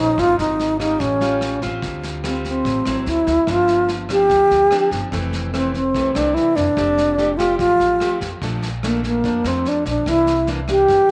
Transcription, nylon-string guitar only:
Already playing: F3 C#4 G#4 C5
0.18 G#2 F#3 C4 D#4
0.80 G3 C#4 F4
1.00 A2
1.21 G3 C#4 F4
1.62 G3 C4 F4
1.83 D3
2.24 G3 C4 F4
2.66 A2
2.86 F#3 C4 E4
3.48 G2 F3 C4 D4
4.10 F3 C4 D4
4.30 D3
4.71 F3 C4 D4
5.12 F2 E3 A3 C4
5.54 E3 A3 C4
5.94 C3 E3 A3 C4
6.14 E3 A3 C4
6.77 F3 A3 C4 G4
7.18 A3 C4 G4
7.39 A3 C4 G4
7.60 F3
8.01 A3 C4 G4
8.43 A#2 F3 A3 D4
8.83 F3 A3 D4
9.24 F2 F3 A3 D4
9.46 F3 A3 D4
10.07 C3 E3 A#3 D4
10.48 E3 A#3 D4
10.68 E3 A#3 D4
10.88 G2

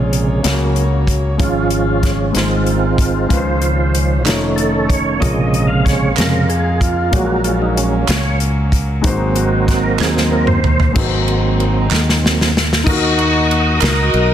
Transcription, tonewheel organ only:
Already playing: C3 C#3 G#3
0.44 F#3 A#3 C#4
1.39 F3 G#3 C#4 F4
2.04 C#4
2.35 D#3 G#3 C4 F4
3.30 D#3 F3 C5
4.25 D#3 A3 C#4
4.56 A4
4.89 C#5
5.20 C3 C#3 G#3 D#5
5.67 F5
5.85 C#5
6.16 C3 C#3 G#3 A#4
6.49 G#4
6.81 F4
7.13 F#3 G#3 A#3 F#4
7.44 F4
7.62 D#4
7.77 C#4
8.10 C#5
9.05 F#3 A#3 C4
9.36 F#4
9.68 F#4
9.83 A#4
10.00 G#4
10.31 F#3 A#3 C4 A#4
10.47 C5
10.94 F#3 A#3 C4
12.23 F#3 A#3 C4
12.86 A#4 D#5 F#5 D#6

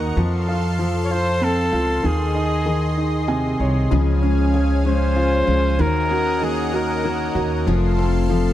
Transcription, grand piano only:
Already playing: D#3 A#3
0.17 F3
0.48 F4
0.79 F3
1.11 F4
1.41 C4
1.72 F4
2.03 D#3
2.35 D#4
2.66 D#3
2.97 D#4
3.28 C3 G#5
3.60 D#4 C#5
3.91 C#3
4.22 C#4
4.54 G#4
4.85 C#4
5.16 F4
5.47 C#4
5.79 D#3
6.11 F#4
6.41 D#3
6.73 F#4
7.04 A#3
7.35 F#4
7.66 F3
7.98 A4
8.30 F3

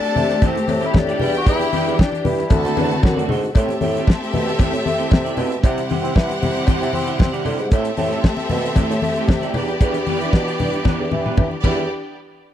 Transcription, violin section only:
Already playing: A4 A5
1.19 G4 G5
2.49 A4 A5
3.54 C4 A4 E5
5.62 C4 G4 F#5
7.73 C4 A4 E5
9.54 B3 G4 D5
11.62 B3 G4 D5

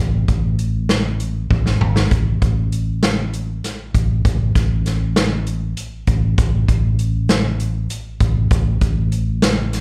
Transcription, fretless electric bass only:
Already playing: A1
0.28 A1
1.51 A1
1.81 G#1
2.11 A1
2.42 A1
3.95 A1
4.25 A1
4.55 A1
6.08 A1
6.38 A1
6.68 A1
8.21 A1
8.51 A1
8.81 A1

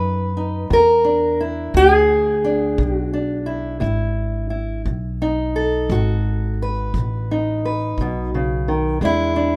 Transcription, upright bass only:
Already playing: F#2
0.70 E2
1.74 D2
2.78 B1
3.81 G#1
4.85 B1
5.89 G#1
6.94 A1
7.98 B1
9.01 E2

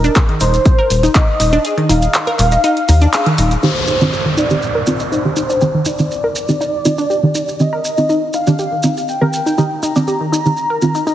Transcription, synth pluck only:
0.04 D4
0.16 G#4
0.29 D#3
0.41 D#4
0.78 A#4
1.03 D#4
1.15 D#4
1.40 D#4
1.53 D4
1.65 G#4
1.77 D#3
1.89 D#4
2.27 A#4
2.52 D#4
2.64 D#4
2.89 D#4
3.02 D4
3.13 G#4
3.26 D#3
3.38 D#4
3.63 D#4
3.88 D#4
4.01 D4
4.13 G4
4.26 D#3
4.37 D#4
4.75 A#4
5.00 D#4
5.12 D#4
5.37 D#4
5.50 D4
5.61 G4
5.74 D#3
5.86 D#4
6.24 A#4
6.49 D#4
6.61 D#4
6.85 D#4
6.98 D4
7.10 G4
7.23 D#3
7.35 D#4
7.73 A#4
7.97 D#4
8.09 D#4
8.34 D#4
8.47 D4
8.59 G4
8.72 D#3
8.84 D#4
9.21 A#4
9.46 D#4
9.58 D#4
9.83 D#4
9.96 D4
10.08 G4
10.21 D#3
10.32 D#4
10.70 A#4
10.95 D#4
11.07 D#4

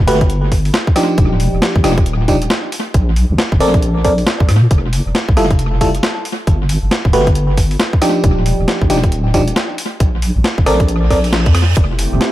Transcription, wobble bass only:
0.07 G1
1.18 D#1
1.53 D#1
1.76 A#1
1.84 D#1
2.94 A#1
3.30 A#1
3.52 F1
3.60 A#1
4.40 A#1
4.49 A#2
4.71 F1
5.06 F1
5.29 C2
5.37 F1
6.47 G1
6.83 G1
7.05 D1
7.13 G1
8.24 D#1
8.59 D#1
8.81 A#1
8.90 D#1
10.00 A#1
10.36 A#1
10.58 F1
10.66 A#1
11.46 F2
11.77 F1
12.12 F1

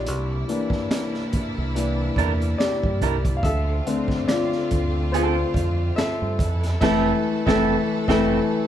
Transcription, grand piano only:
Already playing: G4 D5
0.48 E3 A#3 D4
1.75 E3 A#3 D4
2.58 G4 D5
3.37 F5
3.43 A4 E5
3.86 D3 A3 C4
4.28 F4 D5
5.12 F4 C5
5.96 A4 E5
6.81 E3 A3 A4 E5
7.46 E3 A3 A4 E5
8.08 E3 A3 A4 E5

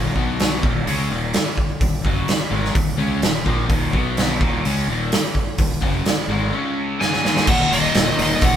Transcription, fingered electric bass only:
Already playing: D#1
0.16 B1
0.64 D#1
0.87 C#2
1.12 D#1
1.81 D#1
2.05 F#1
2.28 muted fingered electric bass stroke
2.51 G#1
2.75 D#1
2.98 C#2
3.23 D#1
3.47 A#1
3.69 D#1
3.94 B1
4.41 D#1
4.66 C#2
4.88 D#1
5.59 D#1
5.82 F#1
6.05 muted fingered electric bass stroke
6.28 G#1
7.48 D#1
7.72 D#1
7.95 D#1
8.19 D#1
8.42 D#1

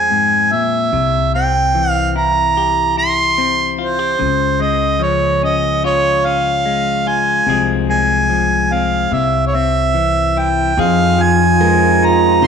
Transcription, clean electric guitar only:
Already playing: F2 F3 G#3 C4 G#4
0.11 G#2
0.52 A#2
0.93 C3
1.36 C4
1.75 E3
2.16 E4
2.57 G4
2.97 E4
3.38 C4
3.79 F4
3.99 G4
4.19 C#3
4.60 G#3
4.99 F3
5.43 C#4
5.84 F4
6.26 C#4
6.66 G#3
7.07 F4
7.46 C3 F3 G#3 C4 G#4
7.90 G#3
8.30 F3
8.72 C4
9.12 C3
9.55 C4
9.94 E3
10.37 E4
10.78 F2 G#4
11.18 F3
11.60 G#3
12.02 D#4
12.42 C3

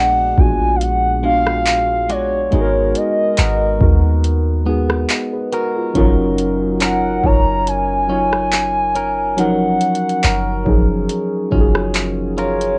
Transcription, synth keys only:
Already playing: G#3 B3 D4 F#4 G#4
0.36 G#3 B3 D4 F4 F#4
1.22 G#3 B3 D4 F4 F#4
2.50 G#3 B3 D#4 F#4 G#4
2.61 A#4
3.79 G#3 B3 D#4 F#4 A#4
4.65 G#3 B3 D#4 F#4 G#4
5.10 B4 D#5
5.33 G#4 B4
5.53 F#4 A#4
5.76 F4 G#4
5.93 F3 C#4 D#4 F4
5.97 F#3 A#4
7.22 F#3 C#4 D#4 F4
7.26 C#5
8.08 F#3 C#4 D#4 F4 C#5
9.36 F3 F#3 C#4 D#4 A#4
10.65 F3 F#3 C#4 D#4 G#4
11.51 F#3 C#4 D#4 F4 F#4
11.61 G#4

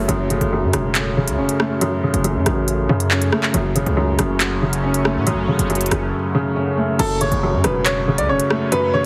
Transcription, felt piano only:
Already playing: F#2 C#3 A3 C#4
0.08 F#2
0.30 C#3
0.53 F#2
0.74 F#2
1.17 C#3
1.38 C#4
1.60 A3
1.81 F#2
2.03 C#3
2.25 F#2
2.47 F#2
2.89 C#3
3.11 C#4
3.32 A3
3.54 F#2
3.75 C#3
3.97 F#2
4.19 F#2
4.62 C#3
4.84 C#4
5.05 A3
5.27 F#2
5.48 C#3
5.70 F#2
5.92 F#2
6.35 C#3
6.56 C#4
6.77 A3
6.99 F#2
7.21 C#3
7.43 F#2
7.64 F#2
8.08 C#3
8.29 C#4
8.50 A3
8.72 F#2
8.94 C#3

